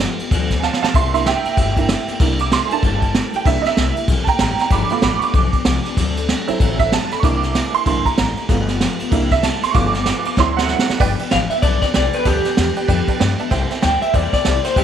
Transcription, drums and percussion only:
0.19 ride
0.31 kick, ride
0.51 kick, snare, ride
0.63 snare
0.74 snare
0.84 snare
0.94 kick, ride
1.14 snare, ride
1.26 snare, ride
1.45 ride
1.57 kick, ride
1.77 kick, ride
1.89 snare, ride
2.08 snare, ride
2.20 kick, snare, ride
2.39 ride
2.52 snare, ride
2.71 ride
2.83 kick, ride
3.02 kick, ride
3.15 snare, ride
3.33 snare, ride
3.46 kick, snare, ride
3.65 snare, ride
3.77 snare, ride
3.96 ride
4.08 kick, ride
4.27 kick, ride
4.39 snare, ride
4.59 snare, ride
4.70 kick, snare, ride
4.90 ride
5.02 snare, ride
5.22 ride
5.34 kick, ride
5.53 kick, ride
5.65 snare, ride
5.85 snare, ride
5.97 kick, snare, ride
6.17 snare, ride
6.29 snare, ride
6.48 ride
6.60 kick, ride
6.79 kick, ride
6.92 snare, ride
7.11 snare, ride
7.23 kick, snare, ride
7.43 snare, ride
7.55 snare, ride
7.74 ride
7.86 kick, ride
8.05 kick, ride
8.18 snare, ride
8.37 ride
8.49 kick, snare, ride
8.68 snare, ride
8.81 snare, ride
9.00 ride
9.12 kick, ride
9.31 kick, snare, ride
9.43 snare, ride
9.63 snare, ride
9.75 kick, snare, ride
9.94 snare, ride
10.06 snare, ride
10.25 ride
10.37 kick, snare
10.58 snare
10.69 snare
10.79 snare
10.90 snare
11.00 kick, crash
11.19 ride
11.31 snare, ride
11.50 ride
11.62 kick, ride
11.82 kick, snare, ride
11.94 snare, ride
12.13 ride
12.25 kick, snare, ride
12.45 snare, ride
12.57 snare, ride
12.76 ride
12.89 kick, ride
13.08 kick, ride
13.20 snare, ride
13.39 ride
13.51 kick, snare, ride
13.71 snare, ride
13.82 snare, ride
14.02 ride
14.14 kick, ride
14.33 kick, snare, ride
14.45 snare, ride
14.64 snare, ride
14.76 kick, snare, ride

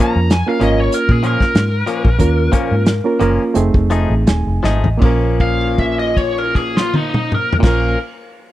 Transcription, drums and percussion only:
0.30 snare, closed hi-hat
0.61 closed hi-hat
0.92 closed hi-hat
1.09 kick
1.23 closed hi-hat
1.40 kick, snare
1.55 snare, closed hi-hat
1.87 closed hi-hat
2.05 kick
2.19 kick, closed hi-hat
2.53 kick, closed hi-hat
2.86 snare, closed hi-hat
3.20 closed hi-hat
3.55 closed hi-hat
3.74 kick
3.90 closed hi-hat
4.27 snare, closed hi-hat
4.64 snare
4.84 floor tom
5.02 kick, crash
5.40 kick, crash
5.61 crash
5.78 kick, crash
5.99 crash
6.17 kick, crash
6.38 crash
6.55 kick, crash
6.77 snare
6.94 high tom
7.14 mid tom
7.32 mid tom
7.53 floor tom
7.63 kick, snare, crash

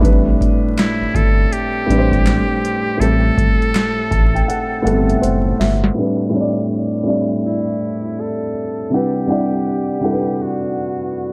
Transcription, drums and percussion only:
0.03 kick, closed hi-hat
0.41 kick, closed hi-hat
0.78 snare, clap, closed hi-hat
1.15 kick, closed hi-hat
1.53 closed hi-hat
1.90 closed hi-hat
2.12 kick, snare, closed hi-hat
2.26 snare, clap, closed hi-hat
2.65 closed hi-hat
3.02 closed hi-hat
3.38 kick, closed hi-hat
3.62 closed hi-hat
3.75 snare, clap, closed hi-hat
4.11 kick, closed hi-hat
4.36 closed hi-hat
4.50 closed hi-hat
4.87 closed hi-hat
5.10 closed hi-hat
5.23 closed hi-hat
5.61 snare, open hi-hat
5.84 snare, closed hi-hat

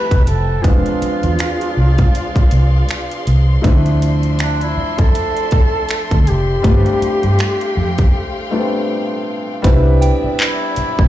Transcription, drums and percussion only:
0.11 kick, closed hi-hat
0.27 closed hi-hat
0.64 kick, closed hi-hat
0.86 closed hi-hat
1.02 closed hi-hat
1.23 closed hi-hat
1.39 finger snap, closed hi-hat
1.61 closed hi-hat
1.98 kick, closed hi-hat
2.15 closed hi-hat
2.36 kick, closed hi-hat
2.51 closed hi-hat
2.89 finger snap, closed hi-hat
3.11 closed hi-hat
3.27 closed hi-hat
3.64 kick, closed hi-hat
3.86 closed hi-hat
4.02 closed hi-hat
4.23 closed hi-hat
4.39 finger snap, closed hi-hat
4.61 closed hi-hat
4.98 kick, closed hi-hat
5.15 closed hi-hat
5.37 closed hi-hat
5.51 kick, closed hi-hat
5.89 finger snap, closed hi-hat
6.11 kick, closed hi-hat
6.27 closed hi-hat
6.64 kick, closed hi-hat
6.86 closed hi-hat
7.02 closed hi-hat
7.23 closed hi-hat
7.39 finger snap, closed hi-hat
7.61 closed hi-hat
7.98 kick, closed hi-hat
9.64 kick, closed hi-hat
10.02 closed hi-hat
10.39 clap, closed hi-hat
10.76 closed hi-hat
10.99 kick

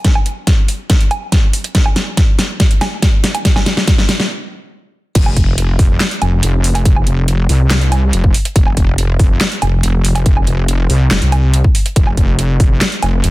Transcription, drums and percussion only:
0.04 kick, snare, closed hi-hat
0.15 low woodblock
0.26 closed hi-hat
0.47 kick, snare, closed hi-hat
0.68 open hi-hat
0.90 kick, snare, closed hi-hat
1.01 closed hi-hat
1.11 closed hi-hat, low woodblock
1.32 kick, snare, closed hi-hat
1.53 open hi-hat
1.64 closed hi-hat
1.75 kick, snare, closed hi-hat
1.86 low woodblock
1.96 snare, closed hi-hat
2.17 kick, snare, closed hi-hat
2.39 snare, open hi-hat
2.60 kick, snare, closed hi-hat
2.71 closed hi-hat
2.81 snare, closed hi-hat, low woodblock
3.02 kick, snare, closed hi-hat
3.24 snare, open hi-hat
3.35 closed hi-hat, low woodblock
3.45 kick, snare, closed hi-hat
3.56 snare, low woodblock
3.66 snare, closed hi-hat
3.77 snare
3.88 kick, snare, closed hi-hat
3.98 snare
4.09 snare, open hi-hat
4.20 snare
5.15 kick, closed hi-hat, crash
5.26 low woodblock
5.37 kick, closed hi-hat
5.58 closed hi-hat
5.79 kick, open hi-hat
6.00 snare, clap, closed hi-hat
6.11 closed hi-hat
6.22 closed hi-hat, low woodblock
6.43 closed hi-hat
6.64 open hi-hat
6.75 closed hi-hat, low woodblock
6.85 kick, closed hi-hat
6.96 low woodblock
7.07 closed hi-hat
7.28 closed hi-hat
7.49 open hi-hat
7.71 snare, clap, closed hi-hat
7.81 closed hi-hat
7.92 closed hi-hat, low woodblock
8.13 closed hi-hat
8.24 kick
8.34 open hi-hat
8.45 closed hi-hat
8.56 kick, closed hi-hat
8.67 low woodblock
8.77 kick, closed hi-hat
8.98 closed hi-hat
9.19 kick, open hi-hat
9.41 snare, clap, closed hi-hat
9.52 closed hi-hat
9.62 closed hi-hat, low woodblock
9.83 closed hi-hat
10.05 open hi-hat
10.15 closed hi-hat, low woodblock
10.26 kick, closed hi-hat
10.37 low woodblock
10.47 closed hi-hat
10.68 closed hi-hat
10.90 open hi-hat
11.11 snare, clap, closed hi-hat
11.22 closed hi-hat
11.32 closed hi-hat, low woodblock
11.54 closed hi-hat
11.64 kick
11.75 open hi-hat
11.86 closed hi-hat
11.96 kick, closed hi-hat
12.07 low woodblock
12.17 kick, closed hi-hat
12.39 closed hi-hat
12.60 kick, open hi-hat
12.81 snare, clap, closed hi-hat
12.92 closed hi-hat
13.03 closed hi-hat, low woodblock
13.24 closed hi-hat

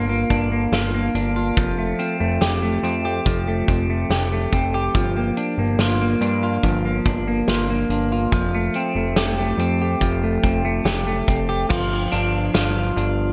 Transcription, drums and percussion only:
0.30 kick, closed hi-hat
0.73 snare, closed hi-hat
1.15 closed hi-hat
1.57 kick, closed hi-hat
2.00 closed hi-hat
2.42 snare, closed hi-hat
2.84 closed hi-hat
3.26 kick, closed hi-hat
3.68 kick, closed hi-hat
4.10 snare, closed hi-hat
4.52 kick, closed hi-hat
4.95 kick, closed hi-hat
5.37 closed hi-hat
5.79 snare, closed hi-hat
6.22 closed hi-hat
6.63 kick, closed hi-hat
7.05 kick, closed hi-hat
7.48 snare, closed hi-hat
7.90 closed hi-hat
8.32 kick, closed hi-hat
8.74 closed hi-hat
9.16 snare, closed hi-hat
9.59 closed hi-hat
10.01 kick, closed hi-hat
10.43 kick, closed hi-hat
10.86 snare, closed hi-hat
11.28 kick, closed hi-hat
11.70 kick, crash
12.12 closed hi-hat
12.55 snare, closed hi-hat, tambourine
12.98 closed hi-hat

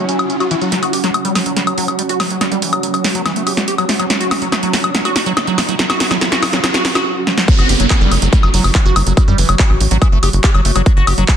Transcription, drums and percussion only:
0.09 closed hi-hat
0.19 closed hi-hat, high woodblock
0.30 closed hi-hat
0.40 closed hi-hat, high woodblock
0.51 closed hi-hat
0.62 closed hi-hat
0.72 snare, closed hi-hat
0.83 closed hi-hat, high woodblock
0.93 open hi-hat
1.04 snare, closed hi-hat
1.14 closed hi-hat, high woodblock
1.25 closed hi-hat
1.35 snare, open hi-hat, high woodblock
1.46 closed hi-hat
1.57 snare, closed hi-hat
1.67 closed hi-hat, high woodblock
1.78 open hi-hat
1.88 closed hi-hat, high woodblock
1.99 closed hi-hat
2.09 closed hi-hat
2.20 snare, open hi-hat, high woodblock
2.30 closed hi-hat
2.41 snare, closed hi-hat, high woodblock
2.52 closed hi-hat
2.62 open hi-hat
2.73 closed hi-hat, high woodblock
2.83 closed hi-hat
2.94 closed hi-hat, high woodblock
3.04 snare, open hi-hat
3.15 closed hi-hat
3.26 snare, closed hi-hat, high woodblock
3.36 closed hi-hat
3.47 open hi-hat, high woodblock
3.57 snare, closed hi-hat
3.68 closed hi-hat
3.78 closed hi-hat, high woodblock
3.89 snare, open hi-hat
4.00 closed hi-hat, high woodblock
4.10 snare, closed hi-hat
4.21 closed hi-hat
4.31 snare, open hi-hat, high woodblock
4.42 closed hi-hat
4.52 snare, closed hi-hat, high woodblock
4.63 closed hi-hat
4.73 snare, open hi-hat
4.84 closed hi-hat, high woodblock
4.95 snare, closed hi-hat
5.05 closed hi-hat, high woodblock
5.16 snare, open hi-hat
5.26 closed hi-hat
5.37 snare, closed hi-hat, high woodblock
5.47 closed hi-hat
5.58 snare, open hi-hat, high woodblock
5.69 closed hi-hat
5.79 snare, closed hi-hat
5.90 snare, closed hi-hat, high woodblock
6.00 snare, open hi-hat
6.11 snare, closed hi-hat, high woodblock
6.21 snare, closed hi-hat
6.32 snare, closed hi-hat
6.43 snare, open hi-hat, high woodblock
6.53 snare, closed hi-hat
6.64 snare, closed hi-hat, high woodblock
6.74 snare, closed hi-hat
6.85 snare, open hi-hat
6.95 snare, closed hi-hat, high woodblock
7.27 snare
7.38 snare
7.48 kick, closed hi-hat
7.59 high woodblock
7.69 open hi-hat
7.80 closed hi-hat
7.90 kick, clap, closed hi-hat, high woodblock
8.12 open hi-hat, high woodblock
8.22 closed hi-hat
8.33 kick, closed hi-hat
8.43 high woodblock
8.54 open hi-hat
8.64 open hi-hat, high woodblock
8.75 kick, clap, closed hi-hat
8.96 open hi-hat, high woodblock
9.07 closed hi-hat
9.17 kick, closed hi-hat, high woodblock
9.38 open hi-hat
9.49 closed hi-hat, high woodblock
9.59 kick, clap, closed hi-hat
9.70 high woodblock
9.81 open hi-hat
9.91 closed hi-hat
10.02 kick, closed hi-hat, high woodblock
10.23 open hi-hat, high woodblock
10.33 closed hi-hat
10.44 kick, clap, closed hi-hat
10.54 high woodblock
10.65 open hi-hat
10.76 closed hi-hat, high woodblock
10.86 kick, closed hi-hat
11.07 open hi-hat, high woodblock
11.18 closed hi-hat
11.28 kick, clap, closed hi-hat, high woodblock

